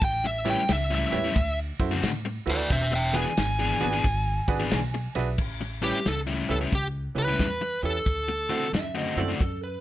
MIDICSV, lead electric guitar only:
0, 0, Header, 1, 2, 480
1, 0, Start_track
1, 0, Tempo, 670391
1, 15, Time_signature, 4, 2, 24, 8
1, 7021, End_track
2, 0, Start_track
2, 0, Title_t, "Lead electric guitar"
2, 0, Program_c, 0, 29
2, 33, Note_on_c, 0, 79, 100
2, 179, Note_off_c, 0, 79, 0
2, 192, Note_on_c, 0, 76, 86
2, 339, Note_off_c, 0, 76, 0
2, 357, Note_on_c, 0, 79, 102
2, 501, Note_off_c, 0, 79, 0
2, 519, Note_on_c, 0, 76, 82
2, 663, Note_off_c, 0, 76, 0
2, 681, Note_on_c, 0, 76, 94
2, 1134, Note_off_c, 0, 76, 0
2, 1786, Note_on_c, 0, 66, 83
2, 1791, Note_on_c, 0, 74, 88
2, 1938, Note_off_c, 0, 74, 0
2, 1940, Note_off_c, 0, 66, 0
2, 1946, Note_on_c, 0, 72, 84
2, 1951, Note_on_c, 0, 76, 103
2, 2090, Note_off_c, 0, 72, 0
2, 2098, Note_off_c, 0, 76, 0
2, 2105, Note_on_c, 0, 76, 82
2, 2115, Note_on_c, 0, 79, 84
2, 2249, Note_off_c, 0, 76, 0
2, 2260, Note_off_c, 0, 79, 0
2, 2272, Note_on_c, 0, 80, 103
2, 3674, Note_off_c, 0, 80, 0
2, 4179, Note_on_c, 0, 67, 75
2, 4346, Note_off_c, 0, 67, 0
2, 4351, Note_on_c, 0, 69, 84
2, 4433, Note_off_c, 0, 69, 0
2, 4662, Note_on_c, 0, 69, 84
2, 4705, Note_off_c, 0, 69, 0
2, 4833, Note_on_c, 0, 67, 76
2, 4914, Note_off_c, 0, 67, 0
2, 5145, Note_on_c, 0, 71, 87
2, 5587, Note_off_c, 0, 71, 0
2, 5624, Note_on_c, 0, 69, 79
2, 6235, Note_off_c, 0, 69, 0
2, 7021, End_track
0, 0, End_of_file